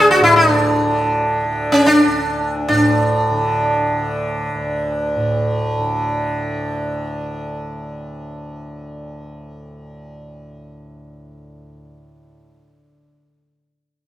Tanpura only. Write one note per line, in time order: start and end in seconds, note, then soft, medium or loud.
0.00 2.06 D2 medium
0.00 0.20 A2 medium
0.00 0.81 D3 medium
0.20 2.69 A2 medium
0.81 1.44 D3 medium
1.44 3.31 D3 medium
2.07 4.54 D2 medium
2.69 5.16 A2 medium
3.31 3.92 D3 medium
3.92 5.79 D3 medium
4.55 11.70 D2 medium
5.16 12.31 A2 medium
5.79 12.94 D3 medium